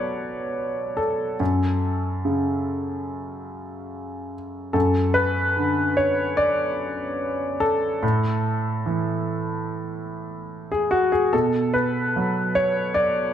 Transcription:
0, 0, Header, 1, 2, 480
1, 0, Start_track
1, 0, Key_signature, 3, "major"
1, 0, Tempo, 839161
1, 802, Time_signature, 4, 2, 24, 8
1, 2242, Tempo, 823045
1, 7734, End_track
2, 0, Start_track
2, 0, Title_t, "Grand piano"
2, 0, Program_c, 0, 0
2, 0, Control_c, 0, 64, 127
2, 0, Note_on_c, 0, 47, 52
2, 0, Note_on_c, 0, 54, 41
2, 0, Note_on_c, 0, 69, 67
2, 0, Note_on_c, 0, 71, 59
2, 0, Note_on_c, 0, 73, 70
2, 0, Note_on_c, 0, 74, 70
2, 554, Note_off_c, 0, 69, 0
2, 554, Note_off_c, 0, 74, 0
2, 554, Note_on_c, 0, 69, 63
2, 779, Note_off_c, 0, 47, 0
2, 799, Note_off_c, 0, 54, 0
2, 800, Note_on_c, 0, 42, 51
2, 810, Control_c, 0, 64, 0
2, 816, Note_off_c, 0, 71, 0
2, 816, Note_off_c, 0, 73, 0
2, 921, Control_c, 0, 64, 127
2, 1286, Note_on_c, 0, 49, 43
2, 2480, Note_off_c, 0, 69, 0
2, 2700, Note_off_c, 0, 42, 0
2, 2716, Note_on_c, 0, 69, 65
2, 2720, Note_on_c, 0, 42, 49
2, 2728, Note_off_c, 0, 49, 0
2, 2734, Control_c, 0, 64, 0
2, 2826, Control_c, 0, 64, 127
2, 2954, Note_on_c, 0, 71, 71
2, 2961, Note_off_c, 0, 69, 0
2, 3203, Note_on_c, 0, 50, 42
2, 3436, Note_off_c, 0, 71, 0
2, 3436, Note_on_c, 0, 73, 70
2, 3671, Note_on_c, 0, 74, 77
2, 3676, Note_off_c, 0, 73, 0
2, 4390, Note_on_c, 0, 69, 78
2, 4395, Note_off_c, 0, 74, 0
2, 4614, Note_off_c, 0, 42, 0
2, 4636, Note_on_c, 0, 45, 57
2, 4638, Note_off_c, 0, 50, 0
2, 4647, Control_c, 0, 64, 0
2, 4748, Control_c, 0, 64, 127
2, 5123, Note_on_c, 0, 52, 41
2, 6199, Note_off_c, 0, 69, 0
2, 6205, Note_on_c, 0, 68, 66
2, 6318, Note_on_c, 0, 66, 73
2, 6324, Note_off_c, 0, 68, 0
2, 6441, Note_off_c, 0, 66, 0
2, 6442, Note_on_c, 0, 68, 65
2, 6538, Note_off_c, 0, 45, 0
2, 6562, Note_off_c, 0, 68, 0
2, 6563, Note_off_c, 0, 52, 0
2, 6563, Note_on_c, 0, 69, 77
2, 6568, Note_on_c, 0, 47, 54
2, 6572, Control_c, 0, 64, 0
2, 6669, Control_c, 0, 64, 127
2, 6800, Note_on_c, 0, 71, 66
2, 6802, Note_off_c, 0, 69, 0
2, 7050, Note_on_c, 0, 54, 42
2, 7276, Note_on_c, 0, 73, 78
2, 7278, Note_off_c, 0, 71, 0
2, 7505, Note_on_c, 0, 74, 80
2, 7518, Note_off_c, 0, 73, 0
2, 7734, Note_off_c, 0, 47, 0
2, 7734, Note_off_c, 0, 54, 0
2, 7734, Note_off_c, 0, 74, 0
2, 7734, End_track
0, 0, End_of_file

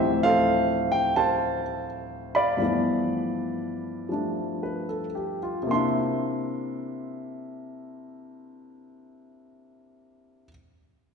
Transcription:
0, 0, Header, 1, 2, 480
1, 0, Start_track
1, 0, Key_signature, 0, "major"
1, 0, Tempo, 705882
1, 1276, Tempo, 742574
1, 1746, Time_signature, 4, 2, 24, 8
1, 2716, Tempo, 794702
1, 3676, Tempo, 820793
1, 6863, End_track
2, 0, Start_track
2, 0, Title_t, "Grand piano"
2, 0, Program_c, 0, 0
2, 0, Note_on_c, 0, 38, 50
2, 0, Note_on_c, 0, 45, 47
2, 0, Note_on_c, 0, 52, 58
2, 0, Note_on_c, 0, 53, 48
2, 0, Note_on_c, 0, 55, 43
2, 0, Note_on_c, 0, 60, 44
2, 0, Note_on_c, 0, 67, 64
2, 0, Note_on_c, 0, 72, 63
2, 0, Note_on_c, 0, 76, 92
2, 129, Note_off_c, 0, 76, 0
2, 155, Note_off_c, 0, 72, 0
2, 159, Note_on_c, 0, 77, 102
2, 166, Note_on_c, 0, 72, 66
2, 168, Note_on_c, 0, 69, 64
2, 623, Note_on_c, 0, 79, 89
2, 647, Note_off_c, 0, 77, 0
2, 767, Note_off_c, 0, 67, 0
2, 786, Note_off_c, 0, 72, 0
2, 791, Note_on_c, 0, 81, 84
2, 793, Note_off_c, 0, 79, 0
2, 796, Note_on_c, 0, 72, 60
2, 796, Note_on_c, 0, 77, 63
2, 1093, Note_off_c, 0, 69, 0
2, 1249, Note_off_c, 0, 81, 0
2, 1580, Note_off_c, 0, 77, 0
2, 1581, Note_on_c, 0, 83, 82
2, 1589, Note_on_c, 0, 74, 71
2, 1590, Note_on_c, 0, 77, 67
2, 1722, Note_off_c, 0, 53, 0
2, 1722, Note_off_c, 0, 72, 0
2, 1725, Note_on_c, 0, 43, 44
2, 1731, Note_on_c, 0, 53, 40
2, 1742, Note_on_c, 0, 57, 43
2, 1744, Note_off_c, 0, 38, 0
2, 1744, Note_off_c, 0, 45, 0
2, 1747, Note_off_c, 0, 55, 0
2, 1748, Note_off_c, 0, 52, 0
2, 1749, Note_off_c, 0, 60, 0
2, 1751, Note_on_c, 0, 59, 42
2, 1759, Note_on_c, 0, 52, 50
2, 2697, Note_off_c, 0, 53, 0
2, 2707, Note_on_c, 0, 53, 39
2, 2709, Note_off_c, 0, 57, 0
2, 2712, Note_on_c, 0, 55, 37
2, 2719, Note_on_c, 0, 57, 37
2, 2725, Note_on_c, 0, 62, 43
2, 3034, Note_on_c, 0, 71, 46
2, 3162, Note_off_c, 0, 83, 0
2, 3166, Note_off_c, 0, 74, 0
2, 3166, Note_off_c, 0, 77, 0
2, 3190, Note_on_c, 0, 69, 44
2, 3279, Note_off_c, 0, 71, 0
2, 3348, Note_on_c, 0, 67, 50
2, 3488, Note_off_c, 0, 69, 0
2, 3516, Note_on_c, 0, 65, 52
2, 3601, Note_off_c, 0, 67, 0
2, 3637, Note_on_c, 0, 48, 58
2, 3661, Note_on_c, 0, 58, 58
2, 3667, Note_off_c, 0, 43, 0
2, 3672, Note_off_c, 0, 53, 0
2, 3674, Note_off_c, 0, 55, 0
2, 3677, Note_off_c, 0, 62, 0
2, 3678, Note_off_c, 0, 57, 0
2, 3679, Note_off_c, 0, 59, 0
2, 3682, Note_off_c, 0, 52, 0
2, 3685, Note_on_c, 0, 62, 53
2, 3686, Note_on_c, 0, 84, 75
2, 3709, Note_on_c, 0, 64, 66
2, 3766, Note_off_c, 0, 65, 0
2, 6455, Note_off_c, 0, 48, 0
2, 6455, Note_off_c, 0, 84, 0
2, 6467, Note_off_c, 0, 58, 0
2, 6479, Note_off_c, 0, 62, 0
2, 6491, Note_off_c, 0, 64, 0
2, 6863, End_track
0, 0, End_of_file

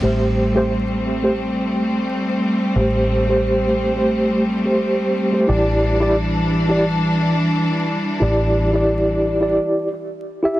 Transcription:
0, 0, Header, 1, 4, 480
1, 0, Start_track
1, 0, Key_signature, 0, "minor"
1, 0, Tempo, 681818
1, 17, Time_signature, 4, 2, 24, 8
1, 7460, End_track
2, 0, Start_track
2, 0, Title_t, "Tine electric piano"
2, 0, Program_c, 0, 4
2, 11, Note_on_c, 0, 57, 67
2, 17, Note_on_c, 0, 67, 63
2, 27, Note_on_c, 0, 72, 78
2, 357, Note_off_c, 0, 57, 0
2, 360, Note_off_c, 0, 67, 0
2, 365, Note_off_c, 0, 72, 0
2, 385, Note_on_c, 0, 57, 84
2, 392, Note_on_c, 0, 67, 78
2, 401, Note_on_c, 0, 72, 96
2, 487, Note_off_c, 0, 57, 0
2, 491, Note_off_c, 0, 67, 0
2, 495, Note_off_c, 0, 72, 0
2, 863, Note_on_c, 0, 57, 75
2, 872, Note_on_c, 0, 67, 68
2, 877, Note_on_c, 0, 72, 83
2, 967, Note_off_c, 0, 57, 0
2, 971, Note_off_c, 0, 67, 0
2, 974, Note_off_c, 0, 72, 0
2, 1931, Note_on_c, 0, 57, 63
2, 1942, Note_on_c, 0, 67, 60
2, 1946, Note_on_c, 0, 72, 73
2, 2277, Note_off_c, 0, 57, 0
2, 2283, Note_off_c, 0, 67, 0
2, 2285, Note_off_c, 0, 72, 0
2, 2307, Note_on_c, 0, 57, 68
2, 2316, Note_on_c, 0, 67, 64
2, 2326, Note_on_c, 0, 72, 78
2, 2757, Note_off_c, 0, 57, 0
2, 2762, Note_off_c, 0, 67, 0
2, 2767, Note_off_c, 0, 72, 0
2, 2787, Note_on_c, 0, 57, 60
2, 2794, Note_on_c, 0, 67, 55
2, 2805, Note_on_c, 0, 72, 68
2, 3109, Note_off_c, 0, 57, 0
2, 3112, Note_off_c, 0, 67, 0
2, 3118, Note_off_c, 0, 72, 0
2, 3271, Note_on_c, 0, 57, 65
2, 3276, Note_on_c, 0, 67, 57
2, 3287, Note_on_c, 0, 72, 68
2, 3719, Note_off_c, 0, 57, 0
2, 3722, Note_off_c, 0, 67, 0
2, 3727, Note_off_c, 0, 72, 0
2, 3747, Note_on_c, 0, 57, 73
2, 3753, Note_on_c, 0, 67, 64
2, 3763, Note_on_c, 0, 72, 83
2, 3838, Note_off_c, 0, 57, 0
2, 3841, Note_off_c, 0, 67, 0
2, 3846, Note_off_c, 0, 72, 0
2, 3852, Note_on_c, 0, 64, 71
2, 3858, Note_on_c, 0, 67, 65
2, 3864, Note_on_c, 0, 74, 80
2, 4198, Note_off_c, 0, 64, 0
2, 4201, Note_off_c, 0, 67, 0
2, 4203, Note_off_c, 0, 74, 0
2, 4225, Note_on_c, 0, 64, 90
2, 4232, Note_on_c, 0, 67, 77
2, 4241, Note_on_c, 0, 74, 100
2, 4327, Note_off_c, 0, 64, 0
2, 4331, Note_off_c, 0, 67, 0
2, 4336, Note_off_c, 0, 74, 0
2, 4707, Note_on_c, 0, 64, 81
2, 4715, Note_on_c, 0, 67, 72
2, 4726, Note_on_c, 0, 74, 87
2, 4808, Note_off_c, 0, 64, 0
2, 4812, Note_off_c, 0, 67, 0
2, 4818, Note_off_c, 0, 74, 0
2, 5773, Note_on_c, 0, 64, 70
2, 5782, Note_on_c, 0, 67, 62
2, 5791, Note_on_c, 0, 74, 78
2, 6118, Note_off_c, 0, 64, 0
2, 6123, Note_off_c, 0, 67, 0
2, 6127, Note_off_c, 0, 74, 0
2, 6146, Note_on_c, 0, 64, 72
2, 6153, Note_on_c, 0, 67, 64
2, 6164, Note_on_c, 0, 74, 80
2, 6597, Note_off_c, 0, 64, 0
2, 6600, Note_off_c, 0, 67, 0
2, 6605, Note_off_c, 0, 74, 0
2, 6621, Note_on_c, 0, 64, 66
2, 6628, Note_on_c, 0, 67, 58
2, 6636, Note_on_c, 0, 74, 73
2, 6946, Note_off_c, 0, 64, 0
2, 6949, Note_off_c, 0, 67, 0
2, 6953, Note_off_c, 0, 74, 0
2, 7340, Note_on_c, 0, 64, 75
2, 7349, Note_on_c, 0, 67, 72
2, 7358, Note_on_c, 0, 76, 84
2, 7445, Note_off_c, 0, 64, 0
2, 7449, Note_off_c, 0, 67, 0
2, 7454, Note_off_c, 0, 76, 0
2, 7460, End_track
3, 0, Start_track
3, 0, Title_t, "String section"
3, 0, Program_c, 1, 48
3, 15, Note_on_c, 1, 60, 75
3, 17, Note_on_c, 1, 57, 59
3, 18, Note_on_c, 1, 55, 66
3, 3828, Note_off_c, 1, 60, 0
3, 3829, Note_off_c, 1, 57, 0
3, 3852, Note_on_c, 1, 52, 72
3, 3856, Note_on_c, 1, 62, 78
3, 6706, Note_off_c, 1, 52, 0
3, 6708, Note_off_c, 1, 62, 0
3, 6709, Note_off_c, 1, 55, 0
3, 7460, End_track
4, 0, Start_track
4, 0, Title_t, "Fingered electric bass"
4, 0, Program_c, 2, 33
4, 20, Note_on_c, 2, 33, 65
4, 1917, Note_off_c, 2, 33, 0
4, 1939, Note_on_c, 2, 33, 72
4, 3837, Note_off_c, 2, 33, 0
4, 3863, Note_on_c, 2, 33, 73
4, 5759, Note_off_c, 2, 33, 0
4, 5779, Note_on_c, 2, 33, 70
4, 6738, Note_off_c, 2, 33, 0
4, 7460, End_track
0, 0, End_of_file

